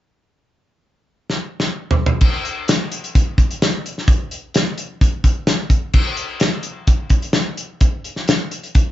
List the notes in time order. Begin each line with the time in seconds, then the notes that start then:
1.30 snare
1.60 snare
1.91 floor tom
2.06 floor tom
2.21 kick, crash
2.45 closed hi-hat
2.68 snare, closed hi-hat
2.92 closed hi-hat
3.04 closed hi-hat
3.15 kick, closed hi-hat
3.38 kick, closed hi-hat
3.51 closed hi-hat
3.62 snare, closed hi-hat
3.86 closed hi-hat
3.98 snare
4.08 kick, closed hi-hat
4.31 closed hi-hat
4.54 snare, closed hi-hat
4.78 closed hi-hat
5.01 kick, closed hi-hat
5.24 kick, closed hi-hat
5.47 snare, closed hi-hat
5.70 kick, closed hi-hat
5.93 kick, crash
6.17 closed hi-hat
6.40 snare, closed hi-hat
6.63 closed hi-hat
6.87 kick, closed hi-hat
7.10 kick, closed hi-hat
7.22 closed hi-hat
7.33 snare, closed hi-hat
7.57 closed hi-hat
7.81 kick, closed hi-hat
8.04 closed hi-hat
8.16 snare
8.28 snare, closed hi-hat
8.51 closed hi-hat
8.63 closed hi-hat
8.75 kick, closed hi-hat